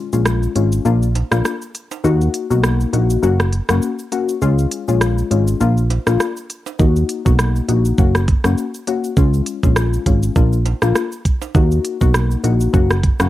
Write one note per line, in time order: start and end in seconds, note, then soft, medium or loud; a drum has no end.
0.13 0.48 A#1 medium
0.13 0.53 G#3 medium
0.13 0.53 C#4 medium
0.13 0.53 F4 medium
0.13 shaker medium
0.26 cross-stick loud
0.26 shaker medium
0.43 shaker medium
0.55 0.80 G#1 medium
0.55 0.83 G#3 medium
0.55 0.83 C#4 medium
0.55 0.83 F4 medium
0.55 closed hi-hat medium
0.55 shaker medium
0.72 shaker medium
0.85 1.23 A#1 loud
0.85 1.07 A#3 medium
0.85 1.07 D4 medium
0.85 1.07 F4 loud
0.85 shaker medium
1.02 shaker medium
1.15 closed hi-hat medium
1.15 high timbale medium
1.15 shaker soft
1.31 1.42 A#1 medium
1.31 1.51 A#3 medium
1.31 1.52 D4 medium
1.31 1.52 F4 medium
1.31 cross-stick loud
1.31 shaker medium
1.45 cross-stick medium
1.45 shaker medium
1.62 shaker medium
1.75 closed hi-hat medium
1.75 shaker medium
1.91 high timbale medium
1.91 shaker medium
2.04 2.29 D#2 loud
2.04 2.46 A#3 medium
2.04 2.47 D#4 medium
2.04 2.47 F#4 loud
2.04 shaker medium
2.21 shaker soft
2.21 shaker medium
2.34 closed hi-hat medium
2.34 shaker medium
2.50 2.86 B1 medium
2.50 2.90 A#3 medium
2.50 2.90 D#4 medium
2.50 2.90 F#4 medium
2.50 shaker medium
2.63 cross-stick loud
2.63 shaker medium
2.80 shaker medium
2.93 3.18 A#1 medium
2.93 3.21 A#3 medium
2.93 3.21 D#4 medium
2.93 3.21 F#4 medium
2.93 closed hi-hat medium
2.93 shaker medium
3.10 shaker medium
3.23 3.61 F#1 loud
3.23 3.45 A#3 medium
3.23 3.45 C#4 medium
3.23 3.45 F#4 loud
3.23 shaker medium
3.40 cross-stick medium
3.40 shaker soft
3.53 closed hi-hat medium
3.53 shaker soft
3.69 3.80 F#1 loud
3.69 3.89 A#3 medium
3.69 3.89 C#4 medium
3.69 3.89 F#4 medium
3.69 cross-stick loud
3.69 shaker medium
3.82 shaker medium
3.99 shaker medium
4.12 4.34 A#3 medium
4.12 4.34 C#4 medium
4.12 4.34 F#4 medium
4.12 closed hi-hat medium
4.12 shaker medium
4.29 shaker medium
4.42 4.66 C#2 loud
4.42 4.84 G#3 medium
4.42 4.84 C#4 medium
4.42 4.84 F4 loud
4.42 shaker medium
4.58 shaker medium
4.72 closed hi-hat medium
4.72 shaker medium
4.88 5.23 A#1 medium
4.88 5.28 G#3 medium
4.88 5.28 C#4 medium
4.88 5.28 F4 medium
4.88 shaker medium
5.01 cross-stick loud
5.01 shaker medium
5.18 shaker medium
5.18 shaker soft
5.31 5.55 G#1 medium
5.31 5.58 G#3 medium
5.31 5.59 C#4 medium
5.31 5.59 F4 medium
5.31 closed hi-hat medium
5.31 shaker soft
5.31 shaker medium
5.47 shaker medium
5.60 5.99 A#1 loud
5.60 5.82 A#3 loud
5.60 5.83 D4 medium
5.60 5.83 F4 loud
5.60 high timbale soft
5.60 shaker medium
5.78 shaker medium
5.90 closed hi-hat medium
5.90 high timbale medium
5.90 shaker soft
6.06 6.18 A#1 medium
6.06 6.27 A#3 medium
6.06 6.27 D4 medium
6.06 6.27 F4 medium
6.06 cross-stick medium
6.06 shaker medium
6.20 cross-stick medium
6.20 shaker medium
6.37 shaker medium
6.50 closed hi-hat medium
6.50 shaker medium
6.66 high timbale medium
6.66 shaker medium
6.79 7.04 D#2 loud
6.79 7.22 A#3 medium
6.79 7.22 D#4 medium
6.79 7.22 F#4 loud
6.79 kick loud
6.79 shaker medium
6.96 shaker medium
7.09 closed hi-hat medium
7.09 shaker medium
7.25 7.61 B1 medium
7.25 7.65 A#3 medium
7.25 7.65 D#4 medium
7.25 7.65 F#4 medium
7.25 kick medium
7.25 shaker medium
7.39 cross-stick loud
7.39 shaker medium
7.56 shaker medium
7.56 shaker soft
7.68 7.93 A#1 medium
7.68 7.96 A#3 medium
7.68 7.96 D#4 medium
7.68 7.96 F#4 medium
7.68 closed hi-hat medium
7.68 shaker medium
7.68 shaker soft
7.85 shaker medium
7.98 8.36 F#1 loud
7.98 8.20 A#3 medium
7.98 8.20 C#4 medium
7.98 8.20 F#4 loud
7.98 kick loud
7.98 shaker medium
8.15 cross-stick medium
8.15 shaker soft
8.15 shaker medium
8.28 kick medium
8.28 closed hi-hat medium
8.28 shaker soft
8.44 8.55 F#1 loud
8.44 8.65 A#3 medium
8.44 8.65 C#4 medium
8.44 8.65 F#4 medium
8.44 cross-stick medium
8.44 shaker medium
8.58 shaker medium
8.74 shaker medium
8.87 9.09 A#3 medium
8.87 9.10 C#4 medium
8.87 9.10 F#4 medium
8.87 closed hi-hat medium
8.87 shaker medium
9.04 shaker medium
9.17 9.41 C#2 loud
9.17 9.59 G#3 medium
9.17 9.59 C#4 medium
9.17 9.60 F4 loud
9.17 kick loud
9.17 shaker medium
9.34 shaker medium
9.46 closed hi-hat medium
9.46 shaker medium
9.63 9.99 A#1 medium
9.63 10.03 G#3 medium
9.63 10.03 C#4 medium
9.63 10.03 F4 medium
9.63 kick medium
9.63 shaker medium
9.76 cross-stick loud
9.76 shaker medium
9.93 shaker medium
10.06 10.31 G#1 medium
10.06 10.34 G#3 medium
10.06 10.34 C#4 medium
10.06 10.34 F4 medium
10.06 kick medium
10.06 closed hi-hat medium
10.06 shaker medium
10.06 shaker soft
10.23 shaker medium
10.36 10.74 A#1 loud
10.36 10.58 A#3 medium
10.36 10.58 D4 medium
10.36 10.58 F4 loud
10.36 kick loud
10.36 shaker medium
10.53 shaker medium
10.66 closed hi-hat medium
10.66 high timbale medium
10.66 shaker soft
10.82 10.93 A#1 medium
10.82 11.02 A#3 medium
10.82 11.02 D4 medium
10.82 11.02 F4 medium
10.82 cross-stick medium
10.82 shaker medium
10.95 cross-stick medium
10.95 shaker medium
11.12 shaker medium
11.25 kick medium
11.25 closed hi-hat medium
11.25 shaker soft
11.25 shaker medium
11.42 high timbale medium
11.42 shaker medium
11.54 11.79 D#2 loud
11.54 11.97 A#3 medium
11.54 11.97 D#4 medium
11.54 11.97 F#4 loud
11.54 kick loud
11.54 shaker medium
11.71 shaker medium
11.84 closed hi-hat medium
11.84 shaker medium
12.01 12.36 B1 medium
12.01 12.40 A#3 medium
12.01 12.41 D#4 medium
12.01 12.41 F#4 medium
12.01 kick loud
12.01 shaker medium
12.14 cross-stick loud
12.14 shaker medium
12.31 shaker medium
12.31 shaker soft
12.43 12.68 A#1 medium
12.43 12.71 A#3 medium
12.43 12.71 D#4 medium
12.43 12.72 F#4 medium
12.43 closed hi-hat medium
12.43 shaker soft
12.43 shaker medium
12.60 shaker medium
12.73 13.12 F#1 loud
12.73 12.95 A#3 medium
12.73 12.95 C#4 medium
12.73 12.96 F#4 loud
12.73 kick loud
12.73 shaker medium
12.90 cross-stick medium
12.90 shaker medium
13.03 kick medium
13.03 closed hi-hat medium
13.03 shaker soft
13.20 13.29 F#1 loud
13.20 13.29 A#3 medium
13.20 13.29 C#4 medium
13.20 13.29 F#4 medium
13.20 cross-stick loud
13.20 shaker medium